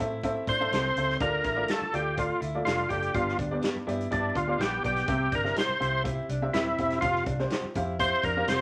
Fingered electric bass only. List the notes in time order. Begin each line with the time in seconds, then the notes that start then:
0.00 A2
0.47 A2
0.72 C2
0.96 C#2
1.21 D2
1.44 A1
1.81 muted fingered electric bass stroke
1.94 D2
2.42 D2
2.66 F1
2.91 F#1
3.14 G1
3.39 D2
3.76 muted fingered electric bass stroke
3.87 G2
4.12 G2
4.35 D2
4.59 A#1
4.85 B1
5.08 C2
5.32 G1
5.69 muted fingered electric bass stroke
5.81 C2
6.29 C2
6.54 D#1
6.78 E1
7.02 F1
7.26 C2
7.63 muted fingered electric bass stroke
7.75 F2
8.24 F2
8.48 F1